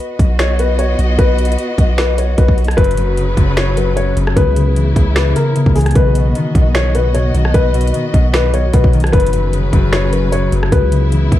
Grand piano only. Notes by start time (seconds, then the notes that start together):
Already playing: B4
0.40 C#5
0.59 B4
0.79 C#5
1.18 B4
1.98 B4
2.18 C#5
2.38 B4
2.77 B4
3.57 C#5
3.77 B4
3.96 C#5
4.36 B4
5.16 B4
5.36 A#4
5.75 G#4
5.96 B4
6.75 C#5
6.95 B4
7.14 C#5
7.54 B4
8.34 B4
8.54 C#5
8.73 B4
9.12 B4
9.93 C#5
10.13 B4
10.32 C#5
10.72 B4